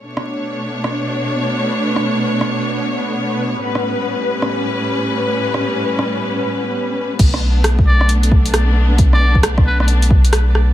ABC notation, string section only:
X:1
M:4/4
L:1/8
Q:"Swing 16ths" 1/4=134
K:Bm
V:1 name="String section"
[B,,A,Dc]8- | [B,,A,Dc]8 | [A,,G,CB]8- | [A,,G,CB]8 |
[A,B,D]8- | [A,B,D]8 |]